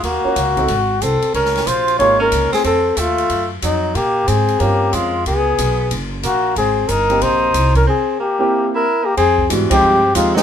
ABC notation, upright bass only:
X:1
M:4/4
L:1/8
Q:"Swing" 1/4=184
K:Fm
V:1 name="Upright bass" clef=bass
E,, z D,,2 A,,,2 C,, z | D,,2 B,,,2 A,,,2 D,, z | F,,2 E,,2 _G,,2 F,,2 | B,,2 A,,2 G,,2 F,,2 |
D,,2 _C,,2 _G,,,2 B,,,2 | A,,,2 G,,,2 B,,,2 C,,2 | z8 | F,,2 A,, z G,,2 E,,2 |]